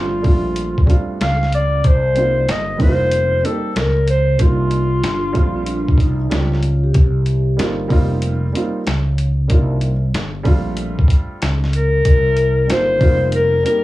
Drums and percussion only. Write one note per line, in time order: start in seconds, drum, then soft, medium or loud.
0.24 kick loud
0.24 open hi-hat soft
0.56 closed hi-hat medium
0.78 kick medium
0.87 kick medium
0.87 closed hi-hat medium
1.21 snare loud
1.21 closed hi-hat medium
1.43 snare soft
1.52 closed hi-hat medium
1.84 kick loud
1.84 closed hi-hat medium
2.16 closed hi-hat medium
2.49 snare medium
2.49 closed hi-hat medium
2.80 kick loud
2.80 open hi-hat soft
3.11 closed hi-hat medium
3.45 closed hi-hat medium
3.76 snare loud
3.76 closed hi-hat medium
4.08 closed hi-hat medium
4.39 kick loud
4.39 closed hi-hat medium
4.71 closed hi-hat medium
5.04 snare medium
5.04 closed hi-hat medium
5.35 kick loud
5.35 closed hi-hat medium
5.66 closed hi-hat medium
5.88 kick medium
5.98 kick medium
5.98 closed hi-hat medium
6.31 snare loud
6.31 closed hi-hat medium
6.53 snare soft
6.63 closed hi-hat medium
6.94 kick loud
6.94 closed hi-hat medium
7.26 closed hi-hat medium
7.59 snare medium
7.59 closed hi-hat medium
7.90 kick loud
7.90 open hi-hat soft
8.22 closed hi-hat medium
8.55 closed hi-hat medium
8.87 snare loud
8.87 closed hi-hat medium
9.18 closed hi-hat medium
9.50 kick loud
9.50 closed hi-hat medium
9.81 closed hi-hat medium
10.14 snare medium
10.14 closed hi-hat medium
10.45 kick loud
10.45 open hi-hat soft
10.77 closed hi-hat medium
10.99 kick medium
11.08 kick medium
11.08 closed hi-hat medium
11.42 snare loud
11.42 closed hi-hat medium
11.64 snare soft
11.73 closed hi-hat medium
12.05 kick loud
12.05 closed hi-hat medium
12.37 closed hi-hat medium
12.70 snare medium
12.70 closed hi-hat medium
13.01 kick loud
13.01 open hi-hat soft
13.32 closed hi-hat medium
13.66 closed hi-hat medium